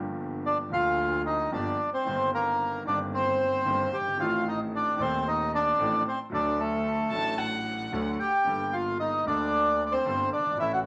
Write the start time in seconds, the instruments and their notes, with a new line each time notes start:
Already playing: grand piano G1 G2 F3 A#3 D4 G4, double bass G1
0.46 bandoneon D4 D5
0.70 grand piano D2 D3 F3 A#3 D4, double bass D2, bandoneon F4 F5
0.74 grand piano G4
1.26 bandoneon D#4 D#5
1.52 grand piano G1 G2 F3 A#3 D4 G4, double bass G1, bandoneon D4 D5
1.93 bandoneon C4 C5
2.04 double bass G1, grand piano G1 G2 D#3 A#3 C4 G4
2.34 bandoneon A#3 A#4
2.85 double bass G1, grand piano G1 G2 D#3 A#3 C4, bandoneon D4 D5
2.89 grand piano G4
3.14 bandoneon C4 C5
3.65 grand piano G1 G2 D#3 A#3 C4 G4, double bass G1
3.92 double bass G1, bandoneon G4 G5
4.00 grand piano F#1
4.06 grand piano G1
4.13 grand piano G#1
4.17 grand piano A1 A2 D#3 A3 C4 A4, double bass A1, bandoneon F4 F5
4.48 bandoneon D#4 D#5
4.75 bandoneon D4 D5
4.96 grand piano D#1 D#2 D#3 A3 C4, double bass D#2
5.01 bandoneon C4 C5, grand piano A4
5.28 bandoneon D#4 D#5
5.54 bandoneon D4 D5
5.79 double bass A1, grand piano A1 A2 D#3 A3 C4 A4
6.07 bandoneon C4 C5
6.30 double bass D2, grand piano D2 D3 F#3 A3 D4
6.34 bandoneon D4 D5, grand piano A4
6.59 bandoneon A3 A4
7.10 double bass A1, grand piano A1 A2 F#3 A3 D4, violin A5
7.14 grand piano A4
7.38 violin F#5
7.92 grand piano D2 D3 F#3 A3 D4 A4, double bass D2
8.20 bandoneon G4 G5
8.44 grand piano G1 G2 G3 A#3 D4 A4, double bass G1
8.73 bandoneon F4 F5
9.00 bandoneon D#4 D#5
9.25 double bass D2, grand piano D2 D3 G3 A#3 D4 A4, bandoneon D4 D5
9.86 bandoneon D5
9.92 bandoneon C4 C5
10.05 grand piano G1 G2 G3 A#3 D4 A4, double bass G1
10.33 double bass G1, bandoneon D4 D5
10.39 grand piano F#1
10.46 grand piano G1
10.52 grand piano G#1
10.57 grand piano A1 A2 E3 A3 C#4 A4, double bass A1, bandoneon E4 E5
10.73 bandoneon F#4 F#5